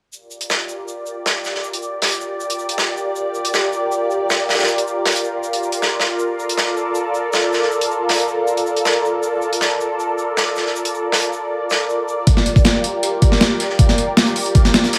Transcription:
0.12 analog synth pad F4 G4 A#4 D5, shaker
0.31 shaker
0.41 closed hi-hat
0.49 snare, shaker
0.69 shaker
0.88 shaker
1.06 shaker
1.26 snare, shaker
1.44 snare, shaker
1.55 snare
1.64 shaker
1.74 closed hi-hat
1.82 shaker
2.02 snare, open hi-hat
2.12 closed hi-hat
2.21 shaker
2.40 shaker
2.50 closed hi-hat
2.59 shaker
2.69 closed hi-hat
2.78 snare, shaker
2.97 shaker
3.16 shaker
3.35 shaker
3.45 closed hi-hat
3.54 snare, shaker
3.73 shaker
3.92 shaker
4.11 shaker
4.30 snare, shaker
4.49 snare, shaker
4.53 snare, shaker
4.59 snare, shaker
4.63 snare, shaker
4.68 shaker
4.78 closed hi-hat
4.87 shaker
5.06 snare, open hi-hat
5.16 closed hi-hat
5.24 shaker
5.43 shaker
5.53 closed hi-hat
5.63 shaker
5.72 closed hi-hat
5.82 snare, shaker
6.00 snare, shaker
6.19 analog synth pad A4 D5, shaker
6.39 shaker
6.49 closed hi-hat
6.57 snare, shaker
6.77 shaker
6.95 shaker
7.14 shaker
7.33 snare, shaker
7.52 snare, shaker
7.62 snare
7.72 shaker
7.81 closed hi-hat
7.91 shaker
8.09 snare, open hi-hat
8.20 closed hi-hat
8.28 shaker
8.47 shaker
8.57 closed hi-hat
8.66 shaker
8.77 closed hi-hat
8.85 snare, shaker
9.05 shaker
9.23 shaker
9.42 shaker
9.53 closed hi-hat
9.61 snare, shaker
9.81 shaker
10.00 shaker
10.18 shaker
10.37 snare, shaker
10.56 snare, shaker
10.66 snare
10.76 shaker
10.85 closed hi-hat
10.94 shaker
11.12 snare, open hi-hat
11.22 closed hi-hat
11.33 shaker
11.70 snare, shaker
11.89 shaker
12.08 shaker
12.27 analog synth pad F4 G4 A#4, kick, closed hi-hat, shaker
12.37 snare
12.46 closed hi-hat, shaker
12.56 kick, closed hi-hat
12.65 snare, closed hi-hat, shaker
12.84 closed hi-hat, shaker
13.03 closed hi-hat, shaker
13.22 kick, closed hi-hat, shaker
13.32 snare
13.41 snare, closed hi-hat, shaker
13.60 snare, closed hi-hat, shaker
13.70 snare
13.79 kick, closed hi-hat, shaker
13.89 snare, closed hi-hat
13.98 closed hi-hat, shaker
14.17 snare, closed hi-hat, open hi-hat
14.27 closed hi-hat
14.36 open hi-hat, shaker
14.46 closed hi-hat
14.55 kick, closed hi-hat, shaker
14.65 snare, closed hi-hat
14.74 snare, closed hi-hat, shaker
14.84 snare, closed hi-hat
14.93 snare, closed hi-hat, shaker

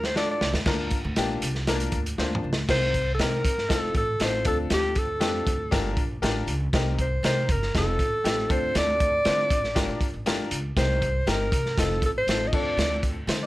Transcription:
Already playing: upright bass D2
0.04 alto saxophone C5, snare
0.15 upright piano D4 F4 A4, alto saxophone D5, snare
0.31 alto saxophone D5
0.41 upright bass C2, snare
0.53 upright bass D#2, snare
0.66 upright bass D2, upright piano A#3 D4 F4 A#4, kick, snare, crash
0.91 kick, closed hi-hat
1.04 upright bass D2
1.16 upright bass A#1, upright piano A#3 D4 F4 G4, snare, closed hi-hat
1.42 upright bass C2, closed hi-hat
1.55 snare
1.67 upright piano A#3 D4 F4 A#4, snare, closed hi-hat
1.80 closed hi-hat
1.92 upright bass D2, kick, closed hi-hat
2.06 closed hi-hat
2.18 upright bass D2, upright piano A#3 D4 F4 C5, snare
2.35 mid tom
2.44 upright bass C#2
2.53 snare
2.69 upright bass C2, upright piano C4 D#4 G4 A#4, alto saxophone C5, kick, snare, crash
2.94 kick, closed hi-hat
3.15 alto saxophone A4
3.19 upright bass C3, upright piano C4 D#4 G4 A#4, alto saxophone A#4, snare, closed hi-hat
3.45 upright bass G1, kick, closed hi-hat
3.58 snare
3.69 upright bass F1, upright piano C4 D#4 F4 A4, kick, snare, closed hi-hat
3.73 alto saxophone A4
3.95 upright bass A1, alto saxophone A4, kick, closed hi-hat
4.20 upright bass A1, upright piano C4 D#4 F4 A4, alto saxophone C5, snare, closed hi-hat
4.45 upright bass D2, upright piano C4 D4 F4 A4, alto saxophone A4, kick, closed hi-hat
4.70 upright bass D2, alto saxophone G4, snare, closed hi-hat
4.95 alto saxophone A4, kick, closed hi-hat
5.20 upright bass F2, upright piano C4 D4 F4 G4, snare, closed hi-hat
5.47 upright bass D2, kick, closed hi-hat
5.71 upright bass G1, upright piano D4 F4 G4 A#4, kick, snare, closed hi-hat
5.97 upright bass A#1, kick, closed hi-hat
6.22 upright bass A1, upright piano D4 F4 G4 A#4, snare, closed hi-hat
6.47 upright bass C#2, closed hi-hat
6.73 upright bass C2, upright piano C4 D#4 G4 A#4, kick, snare, closed hi-hat
6.99 alto saxophone C5, kick, closed hi-hat
7.23 upright bass C3, upright piano C4 D#4 G4 A#4, alto saxophone C5, snare, closed hi-hat
7.49 upright bass G1, alto saxophone A#4, kick, closed hi-hat
7.62 snare
7.74 upright bass F1, upright piano C4 D#4 F4 A4, alto saxophone A4, kick, snare, closed hi-hat
7.99 upright bass A1, kick, closed hi-hat
8.24 upright bass A1, upright piano C4 D#4 F4 G4, snare, closed hi-hat
8.50 upright bass D2, upright piano C4 D4 F4 A4, alto saxophone C5, kick, closed hi-hat
8.75 upright bass D2, alto saxophone D5, snare, closed hi-hat
9.00 kick, closed hi-hat
9.25 upright bass D3, upright piano C4 D4 F4 C5, snare, closed hi-hat
9.50 upright bass A1, kick, closed hi-hat
9.64 snare
9.75 upright bass G1, upright piano D4 F4 G4 A#4, kick, snare, closed hi-hat
9.88 upright bass A#1
10.01 kick, closed hi-hat
10.14 upright bass A1
10.26 upright bass G1, upright piano D4 F4 G4 A#4, snare, closed hi-hat
10.51 upright bass C#2, closed hi-hat
10.76 upright bass C2, upright piano C4 D#4 G4 A#4, alto saxophone C5, kick, snare, closed hi-hat
11.02 kick, closed hi-hat
11.27 upright bass G1, upright piano C4 D#4 G4 A#4, alto saxophone A#4, snare, closed hi-hat
11.52 upright bass C3, kick, closed hi-hat
11.66 snare
11.78 upright bass F1, upright piano C4 D#4 F4 A4, alto saxophone A4, kick, snare, closed hi-hat
12.02 upright bass A1, alto saxophone A4, kick, closed hi-hat
12.18 alto saxophone C5
12.27 upright bass A1, upright piano C4 D#4 F4 A4, snare, closed hi-hat
12.47 alto saxophone D#5
12.53 upright bass D2, upright piano C4 D4 F4 A4, alto saxophone D5, kick, crash
12.77 upright bass D2, snare, closed hi-hat
13.03 kick, closed hi-hat
13.27 upright bass D3, upright piano C5, snare, closed hi-hat
13.43 upright piano D5

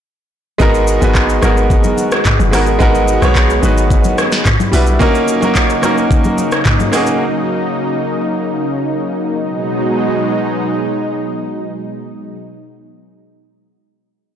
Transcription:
0.58 log drum bass G#1, analog synth pad D#3 G#3 B3 F#4, grand piano G#3 B3 D#4 F#4 A#4, kick, low conga, shaker
0.75 shaker
0.87 shaker
1.01 log drum bass G#1, grand piano G#3 B3 D#4 F#4 B4, high conga, shaker
1.15 kick, clap, shaker
1.29 shaker
1.41 log drum bass G#1, grand piano G#3 B3 D#4 F#4 A#4, cross-stick, high conga, shaker
1.57 shaker
1.70 kick, low conga, shaker
1.84 high conga, shaker
1.98 high conga, shaker
2.12 cross-stick, shaker
2.25 kick, clap, mid tom, low conga, shaker
2.40 log drum bass F#1, high conga, shaker
2.51 log drum bass G#1, grand piano G#3 B3 D#4 F#4 A#4, cross-stick, open hi-hat, shaker
2.67 shaker
2.79 log drum bass G#1, grand piano G#3 B3 D#4 F#4 A#4, kick, low conga, shaker
2.95 shaker
3.08 shaker
3.21 log drum bass B1, grand piano G#3 B3 D#4 F#4 C#5, cross-stick, high conga, shaker
3.35 kick, clap, shaker
3.50 shaker
3.61 log drum bass G#1, grand piano G#3 B3 D#4 F#4 B4, high conga, shaker
3.78 shaker
3.90 kick, low conga, shaker
4.04 high conga, shaker
4.18 cross-stick, high conga, shaker
4.32 snare, shaker
4.45 analog synth pad D3 G3 E4, kick, clap, mid tom, low conga, shaker
4.60 high conga, shaker
4.71 log drum bass B1, grand piano G3 D4 E4 F#4 B4, open hi-hat, shaker
4.87 shaker
4.99 analog synth pad C#3 F#3 A#3 D#4, grand piano A#3 C#4 D#4 F#4 A#4, kick, low conga, shaker
5.15 shaker
5.28 shaker
5.41 grand piano A#3 C#4 D#4 F#4 A#4, high conga, shaker
5.55 kick, clap, shaker
5.70 shaker
5.82 grand piano A#3 C#4 D#4 F#4 A#4, cross-stick, high conga, shaker
5.98 shaker
6.11 kick, low conga, shaker
6.24 high conga, shaker
6.38 high conga, shaker
6.52 cross-stick, shaker
6.66 kick, clap, mid tom, low conga, shaker
6.80 high conga, shaker
6.92 grand piano A#3 C#4 D#4 F#4 G#4, cross-stick, open hi-hat, shaker
7.07 shaker
9.41 analog synth pad B2 F#3 G#3 D#4

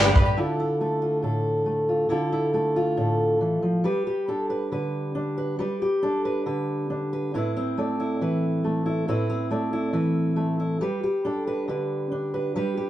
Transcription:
Already playing: upright bass G1, twelve-string acoustic guitar G3 D4 G4 B4, mandolin G4 B4
0.04 mandolin D4
0.15 upright bass G2, twelve-string acoustic guitar D4 G4 B4, mandolin B4, kick
0.26 mandolin G4
0.37 steel-string acoustic guitar D3 E4 F4 A4
0.60 steel-string acoustic guitar E4
0.81 steel-string acoustic guitar A3 A4
1.02 steel-string acoustic guitar F4
1.22 steel-string acoustic guitar A2 A4
1.66 steel-string acoustic guitar A3
1.89 steel-string acoustic guitar F4
2.09 steel-string acoustic guitar D3 E4 F4 A4
2.32 steel-string acoustic guitar E4
2.53 steel-string acoustic guitar A3 A4
2.76 steel-string acoustic guitar F4
2.97 steel-string acoustic guitar A2 A4
3.41 steel-string acoustic guitar E3
3.62 steel-string acoustic guitar F3
3.84 steel-string acoustic guitar G3 G4 B4
4.07 steel-string acoustic guitar G4
4.28 steel-string acoustic guitar D4 A4
4.50 steel-string acoustic guitar B4
4.72 steel-string acoustic guitar D3 B4
5.15 steel-string acoustic guitar D4
5.38 steel-string acoustic guitar B4
5.59 steel-string acoustic guitar G3 G4 B4
5.82 steel-string acoustic guitar G4
6.02 steel-string acoustic guitar D4 A4
6.25 steel-string acoustic guitar B4
6.46 steel-string acoustic guitar D3 B4
6.90 steel-string acoustic guitar D4
7.13 steel-string acoustic guitar B4
7.34 steel-string acoustic guitar A2 C4 E4 B4
7.57 steel-string acoustic guitar C4
7.77 steel-string acoustic guitar A3 D5
8.00 steel-string acoustic guitar E4
8.21 steel-string acoustic guitar E3 B4
8.64 steel-string acoustic guitar A3
8.86 steel-string acoustic guitar E4
9.08 steel-string acoustic guitar A2 C4 E4 B4
9.29 steel-string acoustic guitar C4
9.51 steel-string acoustic guitar A3 D5
9.73 steel-string acoustic guitar E4
9.93 steel-string acoustic guitar E3 B4
10.36 steel-string acoustic guitar A3
10.60 steel-string acoustic guitar E4
10.81 steel-string acoustic guitar G3 G4 B4
11.03 steel-string acoustic guitar G4
11.25 steel-string acoustic guitar D4 A4
11.47 steel-string acoustic guitar B4
11.68 steel-string acoustic guitar D3 B4
12.12 steel-string acoustic guitar D4
12.34 steel-string acoustic guitar B4
12.56 steel-string acoustic guitar G3 G4 B4
12.77 steel-string acoustic guitar G4

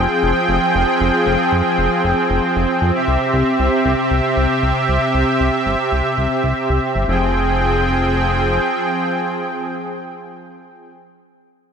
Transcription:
Already playing: supersaw synth F3 C4 G#4 G5
0.23 analog synth bass F1
0.49 analog synth bass F1
0.75 analog synth bass F1
1.01 analog synth bass F1
1.26 analog synth bass F1
1.52 analog synth bass F2
1.78 analog synth bass F1
2.04 analog synth bass F1
2.30 analog synth bass F1
2.56 analog synth bass F1
2.82 analog synth bass F2
2.95 supersaw synth C3 G4 E5
3.08 analog synth bass C2
3.34 analog synth bass C2
3.59 analog synth bass C2
3.85 analog synth bass C2
4.11 analog synth bass C2
4.37 analog synth bass C2
4.63 analog synth bass C2
4.89 analog synth bass C2
5.14 analog synth bass C2
5.40 analog synth bass C2
5.66 analog synth bass G1
5.92 analog synth bass C2
6.18 analog synth bass C2
6.44 analog synth bass C2
6.70 analog synth bass C2
6.95 analog synth bass G1
7.08 analog synth bass F1, supersaw synth F3 C4 G#4 G5

